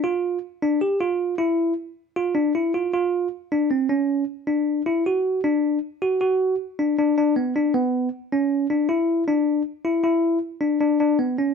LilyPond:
\new Staff \with { instrumentName = "Tine electric piano" } { \time 5/4 \key d \lydian \tempo 4 = 156 eis'4 r8 d'8 g'8 eis'4 e'4 r8 | r8 eis'8 d'8 e'8 eis'8 eis'4 r8 d'8 c'8 | cis'4 r8 d'4 e'8 fis'4 d'4 | r8 fis'8 fis'4 r8 d'8 d'8 d'8 b8 d'8 |
b4 r8 cis'4 d'8 e'4 d'4 | r8 e'8 e'4 r8 d'8 d'8 d'8 b8 cis'8 | }